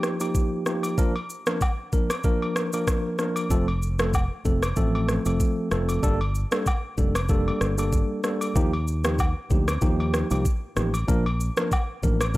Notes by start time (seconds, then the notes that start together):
Already playing: F3 A#3 D#4 G4
0.03 cross-stick, shaker
0.20 F3 A#3 D#4 G4, high agogo, shaker
0.35 kick, shaker
0.66 F3 A#3 D#4 G4, cross-stick, shaker
0.83 high agogo, shaker
0.98 F3 A#3 D4 A#4, kick, shaker
1.16 high agogo
1.30 shaker
1.46 F3 A#3 D4 A#4, cross-stick, shaker
1.61 kick, high agogo, low woodblock, shaker
1.92 F3 A#3 D4 A#4, kick, shaker
2.10 cross-stick, high agogo, shaker
2.24 F3 A#3 D4 A#4, kick, shaker
2.42 high agogo
2.56 cross-stick, shaker
2.73 F3 A#3 D4 A#4, high agogo, shaker
2.87 kick, cross-stick, shaker
3.19 F3 A#3 D4 A#4, cross-stick, shaker
3.36 high agogo, shaker
3.50 F1 F3 A3 C4 A4, kick, shaker
3.68 high agogo
3.82 shaker
3.99 F3 A3 C4 A4, cross-stick, shaker
4.14 kick, high agogo, low woodblock, shaker
4.45 F1 F3 A3 C4 A4, kick, shaker
4.63 cross-stick, high agogo, shaker
4.76 A1 F3 A3 C4 A4, kick, shaker
4.95 high agogo
5.09 cross-stick, shaker
5.25 F1 F3 A3 C4 A4, high agogo, shaker
5.40 kick, shaker
5.71 F1 F3 A3 C4 A4, cross-stick, shaker
5.89 high agogo, shaker
6.03 G1 G3 A#3 D4 A4, kick, shaker
6.21 high agogo
6.35 shaker
6.51 G3 A#3 D4 A4, cross-stick, shaker
6.66 kick, high agogo, low woodblock, shaker
6.97 F1 G3 A#3 D4 A4, kick, shaker
7.15 cross-stick, high agogo, shaker
7.29 G3 A#3 D4 A4, kick, shaker
7.48 high agogo
7.61 G1, cross-stick, shaker
7.78 G3 A#3 D4 A4, high agogo, shaker
7.93 kick, shaker
8.24 G3 A#3 D4 A4, cross-stick, shaker
8.41 high agogo, shaker
8.55 D#2 F3 A#3 D#4 G4, kick, shaker
8.73 high agogo
8.88 shaker
9.04 F3 A#3 D#4 G4, cross-stick, shaker
9.19 kick, high agogo, low woodblock, shaker
9.50 D2 F3 A#3 D#4 G4, kick, shaker
9.68 cross-stick, high agogo, shaker
9.81 D#2 F3 A#3 D#4 G4, kick, shaker
10.00 high agogo
10.14 cross-stick, shaker
10.30 C2 F3 A#3 D#4 G4, high agogo, shaker
10.45 kick, shaker
10.76 A1 F3 A#3 D#4 G4, cross-stick, shaker
10.94 high agogo, shaker
11.08 A#1 F3 A#3 D4 A#4, kick, shaker
11.26 high agogo
11.40 shaker
11.57 F3 A#3 D4 A#4, cross-stick, shaker
11.72 kick, high agogo, low woodblock, shaker
12.03 A1 F3 A#3 D4 A#4, kick, shaker
12.21 cross-stick, high agogo, shaker
12.34 shaker